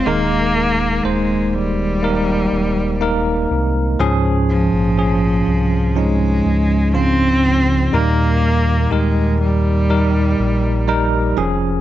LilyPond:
<<
  \new Staff \with { instrumentName = "Tine electric piano" } { \time 4/4 \key ees \mixolydian \tempo 4 = 61 <aes ees' bes'>4 <bes ees' c''>4 <bes ees' bes'>4 <bes ees' bes'>4 | <f des' aes'>4 <f des' aes'>4 <f des' ees'>4 <des f f'>4 | <g ees' bes'>4 <ees' g' bes'>4 <g ees' bes'>4 <g ees' bes'>8 <f des' aes'>8 | }
  \new Staff \with { instrumentName = "Tine electric piano" } { \clef bass \time 4/4 \key ees \mixolydian ees4. r2 r8 | aes,4. r2 r8 | bes,4. r2 r8 | }
  \new Staff \with { instrumentName = "Cello" } { \clef bass \time 4/4 \key ees \mixolydian bes4 aes8 g2 r8 | r8 f4. aes4 c'4 | bes4 aes8 g2 r8 | }
  \new Staff \with { instrumentName = "Sub bass" } { \clef bass \time 4/4 \key ees \mixolydian ees,,4 ees,,4. ees,,4 c,8 | des,8. bes,,8. c,4 des,4. | ees,4 ees,4. bes,,4 f,,8 | }
>>